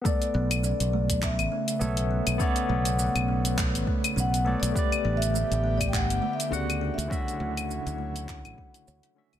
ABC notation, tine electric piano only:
X:1
M:4/4
L:1/8
Q:"Swing 16ths" 1/4=102
K:Bm
V:1 name="Tine electric piano"
[B,Ad]6 [B,Ac]2 | [B,Acd] z6 [B,Acd] | [A,GBd]6 [C,D,Ff]2 | [D,CFe] z6 [D,CFe] |]